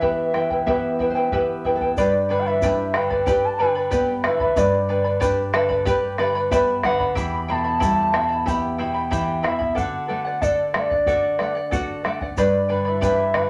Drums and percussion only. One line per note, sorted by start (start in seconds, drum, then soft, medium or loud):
0.02 bombo low medium
0.34 bombo rim soft
0.50 bombo low medium
0.67 bombo low medium
0.99 bombo low medium
1.32 bombo low medium
1.65 bombo low medium
1.81 bombo low medium
1.97 bombo low medium
1.97 shaker loud
2.62 bombo low medium
2.62 shaker loud
2.94 bombo rim medium
3.11 bombo low medium
3.27 bombo low medium
3.27 shaker medium
3.91 bombo low medium
3.91 shaker loud
4.24 bombo rim medium
4.40 bombo low medium
4.56 bombo low medium
4.56 shaker loud
5.21 bombo low medium
5.21 shaker loud
5.54 bombo rim medium
5.70 bombo low medium
5.86 bombo low medium
5.86 shaker loud
6.18 bombo rim medium
6.51 bombo low medium
6.51 shaker loud
6.83 bombo rim medium
6.83 bombo low medium
7.00 bombo low medium
7.16 bombo low medium
7.16 shaker medium
7.81 bombo low medium
7.81 shaker loud
8.14 bombo rim medium
8.47 bombo low medium
8.47 shaker medium
9.12 bombo low medium
9.12 shaker medium
9.44 bombo rim medium
9.61 bombo low medium
9.77 bombo low medium
9.77 shaker medium
10.42 bombo low medium
10.42 shaker loud
10.74 bombo rim medium
10.91 bombo low medium
11.06 bombo low medium
11.06 shaker medium
11.39 bombo rim soft
11.72 bombo low medium
11.72 shaker loud
12.05 bombo rim medium
12.21 bombo low medium
12.37 bombo low medium
12.37 shaker medium
13.02 bombo low medium
13.02 shaker loud
13.34 bombo rim medium